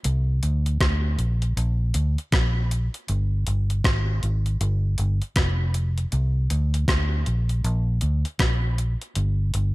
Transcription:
0.04 C2, closed hi-hat
0.43 D2, closed hi-hat
0.66 closed hi-hat
0.81 D2, kick, cross-stick, closed hi-hat
1.18 A#1, closed hi-hat
1.42 closed hi-hat
1.57 A#1, closed hi-hat
1.94 D2, closed hi-hat
2.18 closed hi-hat
2.32 A#1, kick, cross-stick, closed hi-hat
2.71 closed hi-hat
2.94 closed hi-hat
3.08 G1, closed hi-hat
3.47 G1, closed hi-hat
3.70 closed hi-hat
3.84 G#1, kick, cross-stick, closed hi-hat
4.23 G#1, closed hi-hat
4.46 closed hi-hat
4.61 G1, closed hi-hat
4.98 G1, closed hi-hat
5.22 closed hi-hat
5.36 F1, kick, cross-stick, closed hi-hat
5.74 closed hi-hat
5.98 closed hi-hat
6.12 C2, closed hi-hat
6.50 D2, closed hi-hat
6.74 closed hi-hat
6.88 D2, kick, cross-stick, closed hi-hat
7.26 A#1, closed hi-hat
7.49 closed hi-hat
7.64 A#1, closed hi-hat
8.01 D2, closed hi-hat
8.25 closed hi-hat
8.39 A#1, kick, cross-stick, closed hi-hat
8.78 closed hi-hat
9.02 closed hi-hat
9.15 G1, closed hi-hat
9.54 G1, closed hi-hat

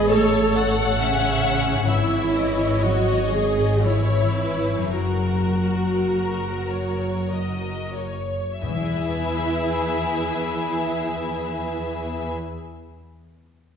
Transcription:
Already playing: A1 A2 B3 E4 B4 C#5
0.09 A3 A4 C#5
0.56 C#5 F#5
0.99 C#3 C#4 E5
1.72 G#2
1.77 C#4
1.81 G#4
1.85 E4 C#5
1.90 G#1 E3 C#5 E5
2.37 D#5
2.83 F#3 F#4
3.31 G#3 G#4
3.84 E3 E4 C#5
4.40 B4
4.75 F#2
4.80 C#4
4.84 G#4
4.89 A#4
4.94 F#1 F#3 F#4
6.11 A#4
6.71 C#5
7.32 D#5
7.97 C#5
8.62 E2 E3 E4 G#4 B4 E5
8.69 E3
8.76 E4
8.83 G#4
8.90 B4
8.97 G#5

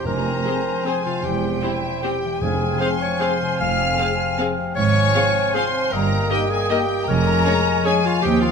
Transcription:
Already playing: C4 C5
0.05 F1 F2 C4 A#4 C5 G#5 A#5
0.26 C4
0.45 C4 G#4 C5
0.66 G#4
0.86 C4 G#4 C5 G#5
1.05 C3 F4 F5
1.23 E1 E2 G4 G5
1.44 C4
1.63 C4 E4 G4 C5 E5
1.85 G4
2.02 C4 G4 C5 G5
2.25 E3
2.41 F1 F2 C4 G#4 F5 G#5
2.61 C4
2.80 C4 G#4 C5 F5 C6
3.01 G#4 C#5 C#6
3.20 C4 G#4 C5 F5 C6
3.42 C3
3.60 F1 F2 F5 F6
3.79 C4
3.98 C4 G#4 C5 F5
4.19 G#4
4.39 C4 G#4 F5
4.59 C3
4.76 G#1 G#2 C4 C#5 F5 G#5 C#6
4.96 C4
5.14 C4 F4 G#4 F5
5.36 C5
5.54 C4 F4 G#4 C5 F5 C6
5.75 C4
5.91 G1 G2 A#3 A#4 D#5 G5 A#5
6.11 A#3
6.29 A#3 D#4 G4 A#4 D#5 G5
6.50 G#4 A#4 G#5
6.70 A#3 D#4 G4 A#4 D#5 G5
6.90 A#3
7.07 F1 F2 F3 G#3 A#4 C#5 G#5 A#5
7.27 G#3
7.45 G#3 C#4 G#4 C#5
7.66 G#4
7.85 G#3 C#4 G#4 C#5 G#5
8.05 F4 F5
8.22 D#2 D#3 C4 G4 D#5 G5
8.41 C4 F4 F5

